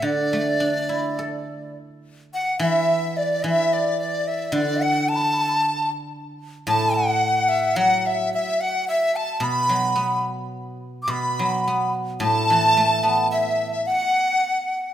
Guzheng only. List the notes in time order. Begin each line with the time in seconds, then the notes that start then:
0.02 D3
0.33 A3
0.60 D4
0.89 E4
1.19 A4
2.59 E3
3.44 E3
4.52 D3
6.67 A2
7.76 F#3
9.40 B2
9.69 F#3
9.96 B3
11.08 B2
11.39 F#3
11.68 B3
12.20 A2
12.50 E3
12.77 A3
13.03 B3